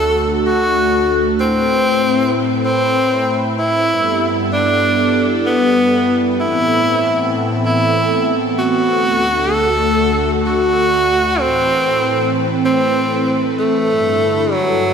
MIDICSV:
0, 0, Header, 1, 3, 480
1, 0, Start_track
1, 0, Tempo, 625000
1, 1077, Time_signature, 4, 2, 24, 8
1, 11471, End_track
2, 0, Start_track
2, 0, Title_t, "Tenor saxophone"
2, 0, Program_c, 0, 66
2, 0, Note_on_c, 0, 69, 105
2, 260, Note_off_c, 0, 69, 0
2, 357, Note_on_c, 0, 66, 103
2, 981, Note_off_c, 0, 66, 0
2, 1076, Note_on_c, 0, 60, 108
2, 1940, Note_off_c, 0, 60, 0
2, 2036, Note_on_c, 0, 60, 107
2, 2661, Note_off_c, 0, 60, 0
2, 2756, Note_on_c, 0, 64, 104
2, 3380, Note_off_c, 0, 64, 0
2, 3477, Note_on_c, 0, 62, 104
2, 4101, Note_off_c, 0, 62, 0
2, 4196, Note_on_c, 0, 59, 104
2, 4820, Note_off_c, 0, 59, 0
2, 4916, Note_on_c, 0, 64, 109
2, 5780, Note_off_c, 0, 64, 0
2, 5876, Note_on_c, 0, 64, 100
2, 6500, Note_off_c, 0, 64, 0
2, 6596, Note_on_c, 0, 66, 105
2, 7315, Note_on_c, 0, 69, 106
2, 7326, Note_off_c, 0, 66, 0
2, 7940, Note_off_c, 0, 69, 0
2, 8036, Note_on_c, 0, 66, 104
2, 8755, Note_on_c, 0, 60, 113
2, 8767, Note_off_c, 0, 66, 0
2, 9620, Note_off_c, 0, 60, 0
2, 9717, Note_on_c, 0, 60, 104
2, 10341, Note_off_c, 0, 60, 0
2, 10436, Note_on_c, 0, 57, 108
2, 11156, Note_on_c, 0, 54, 108
2, 11167, Note_off_c, 0, 57, 0
2, 11471, Note_off_c, 0, 54, 0
2, 11471, End_track
3, 0, Start_track
3, 0, Title_t, "Analog synth pad"
3, 0, Program_c, 1, 89
3, 0, Note_on_c, 1, 38, 82
3, 0, Note_on_c, 1, 50, 78
3, 0, Note_on_c, 1, 57, 76
3, 0, Note_on_c, 1, 66, 76
3, 0, Note_on_c, 1, 69, 94
3, 1057, Note_off_c, 1, 38, 0
3, 1057, Note_off_c, 1, 50, 0
3, 1057, Note_off_c, 1, 66, 0
3, 1057, Note_off_c, 1, 69, 0
3, 1076, Note_on_c, 1, 45, 84
3, 1076, Note_on_c, 1, 60, 77
3, 1076, Note_on_c, 1, 64, 77
3, 1076, Note_on_c, 1, 71, 92
3, 2966, Note_off_c, 1, 57, 0
3, 2977, Note_off_c, 1, 45, 0
3, 2977, Note_off_c, 1, 60, 0
3, 2977, Note_off_c, 1, 71, 0
3, 2996, Note_on_c, 1, 43, 84
3, 2996, Note_on_c, 1, 55, 78
3, 2996, Note_on_c, 1, 59, 77
3, 2996, Note_on_c, 1, 69, 94
3, 4886, Note_off_c, 1, 64, 0
3, 4897, Note_off_c, 1, 43, 0
3, 4897, Note_off_c, 1, 55, 0
3, 4897, Note_off_c, 1, 69, 0
3, 4917, Note_on_c, 1, 45, 84
3, 4917, Note_on_c, 1, 52, 77
3, 4918, Note_on_c, 1, 60, 78
3, 4918, Note_on_c, 1, 69, 92
3, 6805, Note_off_c, 1, 59, 0
3, 6818, Note_off_c, 1, 45, 0
3, 6818, Note_off_c, 1, 52, 0
3, 6818, Note_off_c, 1, 60, 0
3, 6836, Note_on_c, 1, 38, 85
3, 6836, Note_on_c, 1, 50, 75
3, 6836, Note_on_c, 1, 57, 77
3, 6836, Note_on_c, 1, 66, 78
3, 8727, Note_off_c, 1, 69, 0
3, 8737, Note_off_c, 1, 38, 0
3, 8737, Note_off_c, 1, 50, 0
3, 8737, Note_off_c, 1, 57, 0
3, 8737, Note_off_c, 1, 66, 0
3, 8756, Note_on_c, 1, 45, 87
3, 8756, Note_on_c, 1, 52, 76
3, 8756, Note_on_c, 1, 60, 78
3, 8756, Note_on_c, 1, 69, 90
3, 8756, Note_on_c, 1, 71, 78
3, 10657, Note_off_c, 1, 45, 0
3, 10657, Note_off_c, 1, 52, 0
3, 10657, Note_off_c, 1, 60, 0
3, 10677, Note_on_c, 1, 43, 83
3, 10677, Note_on_c, 1, 50, 75
3, 10677, Note_on_c, 1, 64, 77
3, 11471, Note_off_c, 1, 43, 0
3, 11471, Note_off_c, 1, 50, 0
3, 11471, Note_off_c, 1, 64, 0
3, 11471, Note_off_c, 1, 69, 0
3, 11471, Note_off_c, 1, 71, 0
3, 11471, End_track
0, 0, End_of_file